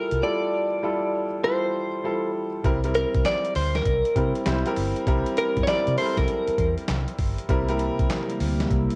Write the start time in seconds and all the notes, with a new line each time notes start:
Already playing: G3 E4 F4 A4 A#4 A5
0.11 C2, closed hi-hat
0.22 G3 E4 F4 A4 D5
0.83 G3 E4 F4 A4
1.43 G3 E4 F4 A4 C5
2.04 G3 E4 F4 A4
2.64 C2 G3 C4 E4 A#4, kick, closed hi-hat
2.84 G3 C4 E4 A#4, closed hi-hat
2.95 A#4, closed hi-hat
3.14 C2, kick, closed hi-hat
3.25 D5, snare, clap, closed hi-hat
3.45 closed hi-hat
3.55 D2 C5, open hi-hat
3.75 A#4, snare, closed hi-hat
3.86 C2, kick, closed hi-hat
4.05 closed hi-hat
4.16 C3 G3 C4 E4 A#4, kick, closed hi-hat
4.35 closed hi-hat
4.46 C2 G3 C4 E4 C5, snare, clap, closed hi-hat
4.66 G3 C4 E4 A#4, closed hi-hat
4.76 G1, open hi-hat
4.96 closed hi-hat
5.07 C2 G3 C4 E4 A#4, kick, closed hi-hat
5.26 closed hi-hat
5.37 G3 C4 E4 A#4, closed hi-hat
5.57 G2, kick, closed hi-hat
5.63 C#5, closed hi-hat
5.67 G3 C4 E4 A#4 D5, muted fingered electric bass stroke, snare, clap
5.87 C3, closed hi-hat
5.98 G3 C4 E4 A4 C5, open hi-hat
6.06 A#4
6.17 C2 A#4, kick, snare, closed hi-hat
6.28 closed hi-hat
6.48 muted fingered electric bass stroke, closed hi-hat
6.58 E2, kick, closed hi-hat
6.78 closed hi-hat
6.88 C2, snare, clap, closed hi-hat
7.08 closed hi-hat
7.19 G1, kick, open hi-hat
7.39 closed hi-hat
7.49 C2 C3 G3 A#3 C4 E4 A#4, kick, closed hi-hat
7.69 G3 C4 E4 A#4, closed hi-hat
7.79 closed hi-hat
7.99 C2, kick, closed hi-hat
8.10 snare, clap, closed hi-hat
8.29 closed hi-hat
8.40 D2, open hi-hat
8.60 snare, closed hi-hat
8.70 C2, kick, closed hi-hat
8.90 closed hi-hat